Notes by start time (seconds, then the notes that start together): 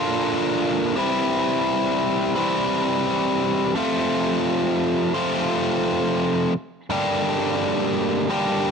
Already playing: A#2 D3 A#3 D4 F4
0.96 C3 E3 G3 C4 E4
2.35 C3 E3 G3 C4 E4
3.75 F2 C3 F3 A3 C4 F4
5.14 F2 C3 F3 A3 C4 F4
6.90 G2 D3 G3 A#3 D4 G4
8.29 G2 D3 G3 A#3 D4 G4